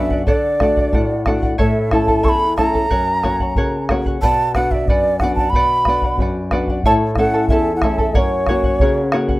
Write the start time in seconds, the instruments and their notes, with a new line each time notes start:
Already playing: nylon-string guitar F#2 B3 D4 F#4, charango B4 D5, quena E5
0.10 charango D5 F#5, bombo low
0.26 nylon-string guitar D3, charango A4 D5 F#5, quena D5, bombo low
0.60 nylon-string guitar A3 D4 F#4, charango A4 D5 F#5, bombo rim, bombo low
0.77 charango D5 F#5, bombo low
0.93 nylon-string guitar A2, charango A4 D5 F#5, bombo low
1.26 nylon-string guitar A3 D4 F#4, charango A4 D5 F#5, bombo rim, bombo low
1.42 charango D5 F#5, bombo low
1.58 nylon-string guitar A2, charango E4 A4 C#5 E5 A5, quena E5, bombo low
1.91 nylon-string guitar A3 C#4 E4, charango E4 A4 E5 A5, quena A5, bombo rim, bombo low
2.08 charango E4 A4 A5, bombo low
2.23 nylon-string guitar E2, charango E4 A4 E5 A5, quena C#6, bombo low
2.29 quena B5
2.57 nylon-string guitar A3 C#4 E4, charango E4 A4 E5 A5, quena A#5, bombo rim, bombo low
2.74 charango E4 A4 A5, bombo low
2.90 nylon-string guitar F#2, charango A#4 C#5 F#5, bombo low
3.23 nylon-string guitar A#3 C#4 F#4, charango A#4 C#5 F#5, bombo rim, bombo low
3.39 charango C#5 F#5, bombo low
3.55 nylon-string guitar C#3, charango A#4 C#5 F#5, bombo low
3.89 nylon-string guitar A#3 C#4 F#4, charango A#4 C#5 F#5, bombo rim, bombo low
4.06 charango C#5 F#5, bombo low
4.21 nylon-string guitar B2, charango B4 D5 F#5, quena A5, bombo low
4.54 nylon-string guitar B3 D4 F#4, charango B4 D5 F#5, quena F#5, bombo rim, bombo low
4.71 charango D5 F#5, quena E5, bombo low
4.88 nylon-string guitar F#2, charango B4 D5 F#5, quena D5, bombo low
5.19 nylon-string guitar B3 D4 F#4, charango B4 D5, quena F#5, bombo rim, bombo low
5.24 charango F#5
5.35 quena A5, bombo low
5.39 charango D5 F#5
5.50 quena B5, bombo low
5.54 nylon-string guitar B2, charango B4 D5 F#5
5.85 nylon-string guitar B3 D4 F#4, charango B4 D5, bombo rim, bombo low
5.89 charango F#5
6.02 charango D5 F#5, bombo low
6.18 nylon-string guitar F#2, charango B4 D5, bombo low
6.22 charango F#5
6.51 nylon-string guitar B3 D4 F#4, charango B4 D5 F#5, bombo rim, bombo low
6.67 charango D5 F#5, bombo low
6.83 nylon-string guitar A2, charango E4 A4 C#5 E5 A5, quena A5, bombo low
7.16 nylon-string guitar A3 C#4 E4, charango E4 A4 E5 A5, quena F#5, bombo rim, bombo low
7.34 charango E4 A4 A5
7.48 nylon-string guitar E2, charango E4 A4 E5 A5, quena E5, bombo low
7.76 quena F#5
7.82 nylon-string guitar A3 C#4 E4, charango E4 A4 E5 A5, quena E5, bombo rim, bombo low
7.98 charango E4 A4 A5, bombo low
8.14 nylon-string guitar F#2, charango A#4 C#5 F#5, quena D5, bombo low
8.19 quena C#5
8.46 nylon-string guitar A#3 C#4 F#4, charango A#4 C#5 F#5, bombo rim, bombo low
8.63 charango C#5 F#5, bombo low
8.79 nylon-string guitar C#3, charango A#4 C#5 F#5, bombo low
9.12 nylon-string guitar A#3 C#4 F#4, charango A#4 C#5 F#5, bombo rim
9.28 charango C#5 F#5, bombo low